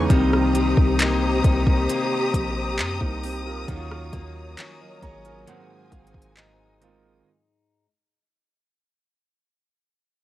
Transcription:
Already playing: E3 G#3 B3 C#4 D#4
0.09 C2 C3 D#3 G3 A#3 C4 D#4 G4 C5 A#5 D#6, kick, closed hi-hat
0.33 cross-stick
0.55 A#3, closed hi-hat
0.77 C2, kick
0.99 A#3 D#4 G4, clap, closed hi-hat
1.44 C2 D#4, kick, closed hi-hat
1.67 kick
1.89 A#3, closed hi-hat
2.34 A#1, kick, closed hi-hat
2.78 F#2 G4, clap, closed hi-hat
3.01 C2 A#3 D#4, kick
3.23 C4 G4, open hi-hat
3.46 F4 A#4
3.67 D#2 D#3 F#3 A#3 C#4 D#4 F#4 C#5, kick, closed hi-hat
3.77 F4
3.91 cross-stick
4.13 D#2 A#3, kick, closed hi-hat
4.57 A#3 C#4 F#4, clap, closed hi-hat
4.81 A#4 D#5
5.02 G#1 C#4 G#4 C#5 A#5, kick, closed hi-hat
5.25 F4 A#4 G#5, closed hi-hat
5.47 G#2 D#3 G#3 A#3 C4 F#4 C5 F#5 G#5, closed hi-hat
5.92 G#1 F5, kick, closed hi-hat
6.07 closed hi-hat
6.14 kick
6.22 closed hi-hat
6.37 D#4 D#5, clap, closed hi-hat
6.81 D#3 G#3 A#3 C4 F4 D#5, closed hi-hat

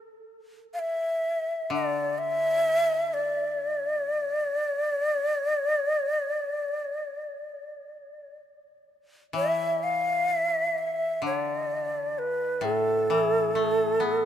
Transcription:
0.74 F5
0.79 E5
1.70 D3 D5
2.18 E5
3.14 D5
9.33 E3 E5
9.83 F5
10.38 E5
10.78 E5
11.22 D3
11.26 D5
12.19 B4
12.61 A2 A4
13.10 E3
13.55 A3
14.00 B3

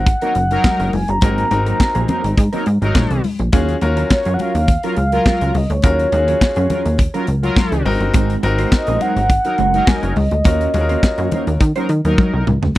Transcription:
Already playing: G#1 F#5
0.07 muted clean electric guitar stroke, kick, closed hi-hat
0.22 F#3 A#3 C4 D#4 A#4, closed hi-hat
0.35 F#1, closed hi-hat
0.51 F#3 D#4 A#4, muted clean electric guitar stroke, closed hi-hat
0.64 muted clean electric guitar stroke, kick, snare, clap, high conga
0.80 F#1, muted clean electric guitar stroke, closed hi-hat
0.93 F#1 G#5, open hi-hat, high conga
1.08 G1 A#5, muted clean electric guitar stroke, closed hi-hat
1.21 G#1 F#3 A#3 C4 D#4 F#4 G#4 A#4, kick, closed hi-hat, muted conga
1.38 closed hi-hat
1.51 G#1 C4 D#4 F#4 A#4, closed hi-hat, muted conga
1.66 F#3 A#3 C4 A#4, closed hi-hat
1.80 kick, snare, clap, high conga
1.95 A#1 F#3 A#3 C4 G#4, closed hi-hat
2.08 F#3 A#3 C4 D#4 A#4, closed hi-hat, muted conga, low conga
2.24 G#1, muted clean electric guitar stroke, closed hi-hat
2.37 G#2, muted clean electric guitar stroke, kick, closed hi-hat
2.52 F#3 A#3 C4 D#4 A#4, closed hi-hat
2.66 G#2, muted clean electric guitar stroke, closed hi-hat
2.81 G#1 F#3 D#4 A#4, muted clean electric guitar stroke, closed hi-hat
2.95 A#1, muted clean electric guitar stroke, kick, snare, clap, high conga
3.11 C2, muted clean electric guitar stroke, closed hi-hat
3.24 open hi-hat, high conga
3.39 A#1, muted clean electric guitar stroke, closed hi-hat
3.52 D#2 F#3 C#4 F4 F#4 G#4, kick, closed hi-hat, muted conga
3.69 closed hi-hat
3.81 D#2 C#4 F4 F#4 A#4, closed hi-hat, muted conga
3.97 F#3 C#4 F4 A#4, closed hi-hat
4.11 C#5, muted clean electric guitar stroke, kick, snare, clap, high conga
4.25 F#2 F#3 C#4 F4 G#4, closed hi-hat
4.34 F#5
4.39 F#3 C#4 F4 A#4 F5, closed hi-hat, muted conga
4.55 D#2, muted clean electric guitar stroke, closed hi-hat
4.68 muted clean electric guitar stroke, kick, closed hi-hat, muted conga
4.83 F#3 C#4 F4 A#4, closed hi-hat
4.96 C#2, closed hi-hat
5.12 F#3 F4 A#4, muted clean electric guitar stroke, closed hi-hat
5.26 muted clean electric guitar stroke, kick, snare, clap, high conga
5.41 C#2, muted clean electric guitar stroke, closed hi-hat
5.54 C#2 D#5, open hi-hat, high conga
5.70 D2 C#5, muted clean electric guitar stroke, closed hi-hat
5.82 D#2 F#3 C#4 F4 F#4 G#4 A#4, kick, closed hi-hat, muted conga
5.99 closed hi-hat
6.12 D#2 C#4 F4 F#4 G#4, muted clean electric guitar stroke, closed hi-hat, muted conga
6.27 F#3 C#4 F4 A#4, closed hi-hat
6.41 kick, snare, clap, high conga
6.56 F#2 F#3 C#4 F4 G#4, closed hi-hat
6.70 F#3 C#4 F4 A#4, closed hi-hat, muted conga, low conga
6.85 D#2, muted clean electric guitar stroke, closed hi-hat
6.98 muted clean electric guitar stroke, kick, closed hi-hat, muted conga
7.14 F#3 C#4 F4 A#4, closed hi-hat
7.27 C#2, closed hi-hat
7.42 F#3 F4 A#4, muted clean electric guitar stroke, closed hi-hat
7.56 muted clean electric guitar stroke, kick, snare, clap, high conga
7.72 C#2, muted clean electric guitar stroke, closed hi-hat
7.85 G#1 C4 D#4 F#4 A#4, open hi-hat, high conga
8.00 G1, muted clean electric guitar stroke, closed hi-hat
8.14 G#1 G#3 C4 F#4 A#4, kick, closed hi-hat, muted conga
8.30 closed hi-hat
8.43 G#1 C4 D#4 F#4 A#4, muted clean electric guitar stroke, closed hi-hat, muted conga
8.58 G#3 C4 F#4 C5, closed hi-hat
8.72 D#5, kick, snare, clap, high conga
8.87 A#1 G#3 C4 F#4 A#4, closed hi-hat
9.00 F#3 G#3 C4 D#4 F#4 A#4 C5 F#5, closed hi-hat, muted conga
9.16 G#1, muted clean electric guitar stroke, closed hi-hat
9.30 muted clean electric guitar stroke, kick, closed hi-hat
9.45 F#3 D#4 A#4, muted clean electric guitar stroke, closed hi-hat
9.58 F#1 G#3 C4 F#4 A#4, closed hi-hat
9.74 F#3 D#4 A#4, muted clean electric guitar stroke, closed hi-hat
9.87 G#5, muted clean electric guitar stroke, kick, snare, clap, high conga
10.03 F#1, muted clean electric guitar stroke, closed hi-hat
10.16 C#2 D#5, open hi-hat, high conga
10.31 D2, muted clean electric guitar stroke, closed hi-hat
10.44 D#2 A#3 C#4 F4 F#4 A#4, kick, closed hi-hat, muted conga
10.61 closed hi-hat
10.74 D#2 C#4 F4 F#4 G#4, muted clean electric guitar stroke, closed hi-hat, muted conga
10.81 A#4
10.89 A#3 C#4 F#4 C5, closed hi-hat
11.03 kick, snare, clap, high conga
11.18 F#2 A#3 C#4 F#4 A#4, closed hi-hat
11.31 F#3 A#3 C#4 D#4 F#4 A#4 C5, closed hi-hat, muted conga, low conga
11.47 D#2, muted clean electric guitar stroke, closed hi-hat
11.60 D#3, muted clean electric guitar stroke, kick, closed hi-hat, muted conga
11.76 F#3 A#3 C#4 D#4 F#4 A#4 C5, closed hi-hat
11.89 D#3, closed hi-hat
12.05 D#2 F#3 D#4 A#4, muted clean electric guitar stroke, closed hi-hat
12.18 muted clean electric guitar stroke, kick, high tom, high conga
12.33 C2, muted clean electric guitar stroke
12.47 C#2, mid tom, high conga
12.62 D2, muted clean electric guitar stroke, floor tom

